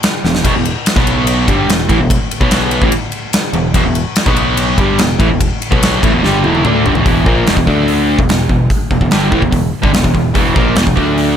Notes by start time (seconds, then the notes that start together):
0.03 snare, ride
0.24 E1 E2 B2, snare
0.35 snare
0.44 E1 E2 B2, kick, ride, crash
0.55 E1 E2 B2
0.65 ride
0.86 snare, ride
0.96 B1 B2 F#3 B3, kick, snare
1.07 ride
1.27 ride
1.48 G1 G2 D3 G3, kick, ride
1.69 E1 E2 B2, snare, ride
1.89 A1 A2 E3, kick, ride
1.98 E1 E2 B2
2.10 kick, ride
2.31 ride
2.41 B1 B2 F#3 B3, kick
2.51 snare, ride
2.71 ride
2.82 A1 A2 E3, kick
2.92 ride
3.12 ride
3.33 snare, ride
3.53 E1 E2 B2, ride
3.74 E1 E2 B2, kick, ride
3.85 E1 E2 B2
3.95 ride
4.16 snare, ride
4.26 B1 B2 F#3 B3, kick
4.36 ride
4.57 ride
4.78 G1 G2 D3 G3, kick, ride
4.98 E1 E2 B2, snare, ride
5.19 A1 A2 E3, kick, ride
5.29 E1 E2 B2
5.41 kick, ride
5.62 ride
5.71 B1 B2 F#3 B3, kick
5.83 snare, ride
6.03 A1 A2 E3, kick, ride
6.13 E1 E2 B2
6.23 G1 G2 D3 G3, snare
6.44 E1 E2 B2 E3, high tom
6.55 high tom
6.64 D2 D3 A3 D4, mid tom
6.85 G1 G2 D3, floor tom
6.95 E1 E2 B2, floor tom
7.04 E1 E2 B2 E3, kick, open hi-hat
7.25 A#1 A#2 F3 A#3, kick
7.46 E1 E2 B2, snare, open hi-hat
7.57 E1 E2 B2, kick
7.67 D2 D3 A3 D4, kick
7.88 open hi-hat
8.18 E1 E2 B2, kick
8.29 E1 E2 B2, snare, open hi-hat
8.49 E1 E2 B2, kick
8.70 kick, open hi-hat
8.91 E1 E2 B2, kick
9.01 E1 E2 B2, kick
9.11 G1 G2 D3 G3, snare, open hi-hat
9.32 A1 A2 E3, kick
9.42 E1 E2 B2, kick
9.52 E1 E2 B2, kick, open hi-hat
9.82 G1 G2 D3, kick
9.93 E1 E2 B2, snare, open hi-hat
10.03 E1 E2 B2, kick
10.14 E1 E2 B2, kick
10.34 E1 E2 B2 E3, kick, open hi-hat
10.54 A#1 A#2 F3 A#3, kick
10.75 E1 E2 B2, snare, open hi-hat
10.85 E1 E2 B2, kick
10.96 D2 D3 A3 D4, kick
11.18 open hi-hat